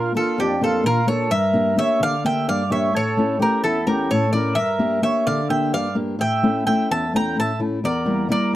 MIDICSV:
0, 0, Header, 1, 4, 480
1, 0, Start_track
1, 0, Tempo, 465116
1, 1362, Time_signature, 7, 3, 24, 8
1, 8833, End_track
2, 0, Start_track
2, 0, Title_t, "Bouzouki"
2, 0, Program_c, 0, 25
2, 0, Note_on_c, 0, 70, 89
2, 127, Note_off_c, 0, 70, 0
2, 172, Note_on_c, 0, 69, 79
2, 410, Note_on_c, 0, 67, 86
2, 414, Note_off_c, 0, 69, 0
2, 630, Note_off_c, 0, 67, 0
2, 657, Note_on_c, 0, 69, 74
2, 885, Note_off_c, 0, 69, 0
2, 889, Note_on_c, 0, 70, 92
2, 1110, Note_off_c, 0, 70, 0
2, 1114, Note_on_c, 0, 73, 84
2, 1341, Note_off_c, 0, 73, 0
2, 1352, Note_on_c, 0, 76, 99
2, 1831, Note_off_c, 0, 76, 0
2, 1843, Note_on_c, 0, 76, 99
2, 2066, Note_off_c, 0, 76, 0
2, 2094, Note_on_c, 0, 77, 111
2, 2326, Note_off_c, 0, 77, 0
2, 2330, Note_on_c, 0, 79, 94
2, 2550, Note_off_c, 0, 79, 0
2, 2568, Note_on_c, 0, 77, 101
2, 2789, Note_off_c, 0, 77, 0
2, 2807, Note_on_c, 0, 76, 79
2, 3029, Note_off_c, 0, 76, 0
2, 3059, Note_on_c, 0, 73, 93
2, 3498, Note_off_c, 0, 73, 0
2, 3531, Note_on_c, 0, 70, 84
2, 3748, Note_off_c, 0, 70, 0
2, 3752, Note_on_c, 0, 69, 93
2, 3981, Note_off_c, 0, 69, 0
2, 3992, Note_on_c, 0, 70, 78
2, 4220, Note_off_c, 0, 70, 0
2, 4238, Note_on_c, 0, 73, 95
2, 4461, Note_off_c, 0, 73, 0
2, 4465, Note_on_c, 0, 74, 79
2, 4697, Note_on_c, 0, 76, 94
2, 4722, Note_off_c, 0, 74, 0
2, 5181, Note_off_c, 0, 76, 0
2, 5193, Note_on_c, 0, 76, 90
2, 5421, Note_off_c, 0, 76, 0
2, 5436, Note_on_c, 0, 77, 93
2, 5674, Note_off_c, 0, 77, 0
2, 5678, Note_on_c, 0, 79, 78
2, 5918, Note_off_c, 0, 79, 0
2, 5922, Note_on_c, 0, 77, 92
2, 6146, Note_off_c, 0, 77, 0
2, 6407, Note_on_c, 0, 79, 86
2, 6868, Note_off_c, 0, 79, 0
2, 6880, Note_on_c, 0, 79, 84
2, 7129, Note_off_c, 0, 79, 0
2, 7136, Note_on_c, 0, 81, 101
2, 7353, Note_off_c, 0, 81, 0
2, 7389, Note_on_c, 0, 82, 93
2, 7623, Note_off_c, 0, 82, 0
2, 7633, Note_on_c, 0, 81, 89
2, 7843, Note_off_c, 0, 81, 0
2, 8101, Note_on_c, 0, 74, 91
2, 8540, Note_off_c, 0, 74, 0
2, 8583, Note_on_c, 0, 74, 89
2, 8798, Note_off_c, 0, 74, 0
2, 8833, End_track
3, 0, Start_track
3, 0, Title_t, "Accordion"
3, 0, Program_c, 1, 21
3, 0, Note_on_c, 1, 65, 83
3, 129, Note_off_c, 1, 65, 0
3, 184, Note_on_c, 1, 65, 75
3, 397, Note_off_c, 1, 65, 0
3, 410, Note_on_c, 1, 62, 74
3, 630, Note_off_c, 1, 62, 0
3, 653, Note_on_c, 1, 65, 76
3, 871, Note_off_c, 1, 65, 0
3, 889, Note_on_c, 1, 65, 82
3, 1109, Note_off_c, 1, 65, 0
3, 1129, Note_on_c, 1, 69, 78
3, 1349, Note_off_c, 1, 69, 0
3, 1372, Note_on_c, 1, 70, 85
3, 1814, Note_off_c, 1, 70, 0
3, 1853, Note_on_c, 1, 73, 89
3, 2071, Note_off_c, 1, 73, 0
3, 2094, Note_on_c, 1, 74, 90
3, 2312, Note_off_c, 1, 74, 0
3, 2330, Note_on_c, 1, 76, 90
3, 2550, Note_off_c, 1, 76, 0
3, 2577, Note_on_c, 1, 74, 95
3, 2793, Note_off_c, 1, 74, 0
3, 2805, Note_on_c, 1, 73, 80
3, 3027, Note_off_c, 1, 73, 0
3, 3041, Note_on_c, 1, 69, 87
3, 3488, Note_off_c, 1, 69, 0
3, 3508, Note_on_c, 1, 67, 77
3, 3738, Note_off_c, 1, 67, 0
3, 3755, Note_on_c, 1, 64, 76
3, 3982, Note_off_c, 1, 64, 0
3, 4011, Note_on_c, 1, 67, 69
3, 4230, Note_off_c, 1, 67, 0
3, 4255, Note_on_c, 1, 69, 81
3, 4473, Note_off_c, 1, 69, 0
3, 4500, Note_on_c, 1, 70, 73
3, 4710, Note_off_c, 1, 70, 0
3, 4726, Note_on_c, 1, 70, 82
3, 5171, Note_off_c, 1, 70, 0
3, 5199, Note_on_c, 1, 73, 72
3, 5423, Note_on_c, 1, 74, 77
3, 5424, Note_off_c, 1, 73, 0
3, 5656, Note_off_c, 1, 74, 0
3, 5664, Note_on_c, 1, 76, 75
3, 5896, Note_off_c, 1, 76, 0
3, 5926, Note_on_c, 1, 74, 71
3, 6148, Note_off_c, 1, 74, 0
3, 6405, Note_on_c, 1, 76, 74
3, 6851, Note_off_c, 1, 76, 0
3, 6879, Note_on_c, 1, 76, 75
3, 7104, Note_off_c, 1, 76, 0
3, 7128, Note_on_c, 1, 76, 78
3, 7349, Note_off_c, 1, 76, 0
3, 7395, Note_on_c, 1, 79, 85
3, 7604, Note_off_c, 1, 79, 0
3, 7635, Note_on_c, 1, 76, 80
3, 7844, Note_off_c, 1, 76, 0
3, 8101, Note_on_c, 1, 70, 82
3, 8540, Note_off_c, 1, 70, 0
3, 8578, Note_on_c, 1, 70, 75
3, 8793, Note_off_c, 1, 70, 0
3, 8833, End_track
4, 0, Start_track
4, 0, Title_t, "Steel-string acoustic guitar"
4, 0, Program_c, 2, 25
4, 0, Note_on_c, 2, 46, 71
4, 0, Note_on_c, 2, 58, 50
4, 0, Note_on_c, 2, 62, 47
4, 0, Note_on_c, 2, 65, 61
4, 138, Note_off_c, 2, 58, 0
4, 139, Note_off_c, 2, 62, 0
4, 145, Note_off_c, 2, 46, 0
4, 147, Note_off_c, 2, 65, 0
4, 149, Note_on_c, 2, 58, 45
4, 153, Note_on_c, 2, 62, 45
4, 159, Note_on_c, 2, 65, 55
4, 393, Note_on_c, 2, 41, 74
4, 539, Note_off_c, 2, 58, 0
4, 540, Note_off_c, 2, 62, 0
4, 545, Note_off_c, 2, 65, 0
4, 632, Note_on_c, 2, 58, 51
4, 633, Note_on_c, 2, 62, 44
4, 640, Note_on_c, 2, 65, 57
4, 863, Note_off_c, 2, 41, 0
4, 863, Note_on_c, 2, 46, 65
4, 1019, Note_off_c, 2, 62, 0
4, 1021, Note_off_c, 2, 58, 0
4, 1025, Note_off_c, 2, 65, 0
4, 1104, Note_on_c, 2, 58, 52
4, 1109, Note_on_c, 2, 62, 43
4, 1119, Note_on_c, 2, 65, 54
4, 1304, Note_off_c, 2, 58, 0
4, 1304, Note_off_c, 2, 62, 0
4, 1312, Note_off_c, 2, 65, 0
4, 1338, Note_off_c, 2, 46, 0
4, 1346, Note_on_c, 2, 43, 65
4, 1581, Note_on_c, 2, 58, 52
4, 1590, Note_on_c, 2, 62, 49
4, 1598, Note_on_c, 2, 67, 57
4, 1811, Note_off_c, 2, 58, 0
4, 1818, Note_off_c, 2, 62, 0
4, 1819, Note_off_c, 2, 43, 0
4, 1820, Note_off_c, 2, 67, 0
4, 1823, Note_on_c, 2, 58, 49
4, 1830, Note_on_c, 2, 62, 46
4, 1833, Note_on_c, 2, 67, 51
4, 2062, Note_on_c, 2, 50, 69
4, 2215, Note_off_c, 2, 58, 0
4, 2219, Note_off_c, 2, 62, 0
4, 2221, Note_off_c, 2, 67, 0
4, 2314, Note_on_c, 2, 58, 51
4, 2316, Note_on_c, 2, 62, 46
4, 2320, Note_on_c, 2, 67, 58
4, 2538, Note_off_c, 2, 50, 0
4, 2561, Note_on_c, 2, 43, 62
4, 2701, Note_off_c, 2, 62, 0
4, 2702, Note_off_c, 2, 58, 0
4, 2705, Note_off_c, 2, 67, 0
4, 2789, Note_on_c, 2, 58, 46
4, 2795, Note_on_c, 2, 62, 44
4, 2797, Note_on_c, 2, 67, 52
4, 2987, Note_off_c, 2, 58, 0
4, 2989, Note_off_c, 2, 62, 0
4, 2991, Note_off_c, 2, 67, 0
4, 3028, Note_off_c, 2, 43, 0
4, 3029, Note_on_c, 2, 45, 68
4, 3272, Note_on_c, 2, 57, 54
4, 3281, Note_on_c, 2, 61, 47
4, 3288, Note_on_c, 2, 64, 60
4, 3490, Note_off_c, 2, 57, 0
4, 3490, Note_off_c, 2, 61, 0
4, 3500, Note_off_c, 2, 64, 0
4, 3501, Note_off_c, 2, 45, 0
4, 3502, Note_on_c, 2, 57, 51
4, 3503, Note_on_c, 2, 61, 44
4, 3512, Note_on_c, 2, 64, 54
4, 3754, Note_on_c, 2, 40, 70
4, 3894, Note_off_c, 2, 61, 0
4, 3895, Note_off_c, 2, 57, 0
4, 3900, Note_off_c, 2, 64, 0
4, 3993, Note_on_c, 2, 57, 49
4, 3994, Note_on_c, 2, 61, 47
4, 3999, Note_on_c, 2, 64, 51
4, 4224, Note_off_c, 2, 40, 0
4, 4239, Note_on_c, 2, 45, 64
4, 4380, Note_off_c, 2, 61, 0
4, 4382, Note_off_c, 2, 57, 0
4, 4384, Note_off_c, 2, 64, 0
4, 4469, Note_on_c, 2, 57, 49
4, 4474, Note_on_c, 2, 61, 43
4, 4476, Note_on_c, 2, 64, 56
4, 4667, Note_off_c, 2, 57, 0
4, 4667, Note_off_c, 2, 61, 0
4, 4671, Note_off_c, 2, 64, 0
4, 4707, Note_off_c, 2, 45, 0
4, 4708, Note_on_c, 2, 43, 63
4, 4942, Note_on_c, 2, 58, 48
4, 4948, Note_on_c, 2, 62, 44
4, 4952, Note_on_c, 2, 67, 55
4, 5171, Note_off_c, 2, 58, 0
4, 5174, Note_off_c, 2, 62, 0
4, 5178, Note_off_c, 2, 67, 0
4, 5181, Note_off_c, 2, 43, 0
4, 5182, Note_on_c, 2, 58, 50
4, 5187, Note_on_c, 2, 62, 40
4, 5191, Note_on_c, 2, 67, 51
4, 5438, Note_on_c, 2, 50, 68
4, 5575, Note_off_c, 2, 58, 0
4, 5577, Note_off_c, 2, 62, 0
4, 5580, Note_off_c, 2, 67, 0
4, 5668, Note_on_c, 2, 58, 50
4, 5674, Note_on_c, 2, 67, 54
4, 5676, Note_on_c, 2, 62, 45
4, 5906, Note_off_c, 2, 50, 0
4, 5914, Note_on_c, 2, 43, 66
4, 6058, Note_off_c, 2, 58, 0
4, 6061, Note_off_c, 2, 67, 0
4, 6063, Note_off_c, 2, 62, 0
4, 6141, Note_on_c, 2, 58, 48
4, 6145, Note_on_c, 2, 62, 44
4, 6151, Note_on_c, 2, 67, 54
4, 6342, Note_off_c, 2, 58, 0
4, 6344, Note_off_c, 2, 62, 0
4, 6348, Note_off_c, 2, 67, 0
4, 6384, Note_off_c, 2, 43, 0
4, 6386, Note_on_c, 2, 45, 70
4, 6638, Note_on_c, 2, 57, 55
4, 6644, Note_on_c, 2, 61, 47
4, 6644, Note_on_c, 2, 64, 61
4, 6860, Note_off_c, 2, 45, 0
4, 6869, Note_off_c, 2, 57, 0
4, 6874, Note_off_c, 2, 61, 0
4, 6877, Note_off_c, 2, 64, 0
4, 6882, Note_on_c, 2, 57, 52
4, 6885, Note_on_c, 2, 61, 43
4, 6892, Note_on_c, 2, 64, 54
4, 7132, Note_on_c, 2, 40, 68
4, 7267, Note_off_c, 2, 57, 0
4, 7269, Note_off_c, 2, 61, 0
4, 7271, Note_off_c, 2, 64, 0
4, 7364, Note_on_c, 2, 57, 53
4, 7368, Note_on_c, 2, 61, 43
4, 7375, Note_on_c, 2, 64, 56
4, 7594, Note_off_c, 2, 40, 0
4, 7602, Note_on_c, 2, 45, 61
4, 7748, Note_off_c, 2, 57, 0
4, 7751, Note_off_c, 2, 61, 0
4, 7753, Note_off_c, 2, 64, 0
4, 7837, Note_on_c, 2, 57, 49
4, 7839, Note_on_c, 2, 61, 46
4, 7845, Note_on_c, 2, 64, 56
4, 8032, Note_off_c, 2, 57, 0
4, 8032, Note_off_c, 2, 61, 0
4, 8037, Note_off_c, 2, 64, 0
4, 8069, Note_off_c, 2, 45, 0
4, 8089, Note_on_c, 2, 40, 69
4, 8314, Note_on_c, 2, 55, 53
4, 8318, Note_on_c, 2, 58, 48
4, 8321, Note_on_c, 2, 64, 58
4, 8539, Note_off_c, 2, 55, 0
4, 8550, Note_off_c, 2, 58, 0
4, 8551, Note_off_c, 2, 64, 0
4, 8552, Note_on_c, 2, 55, 51
4, 8553, Note_off_c, 2, 40, 0
4, 8561, Note_on_c, 2, 58, 49
4, 8567, Note_on_c, 2, 64, 54
4, 8833, Note_off_c, 2, 55, 0
4, 8833, Note_off_c, 2, 58, 0
4, 8833, Note_off_c, 2, 64, 0
4, 8833, End_track
0, 0, End_of_file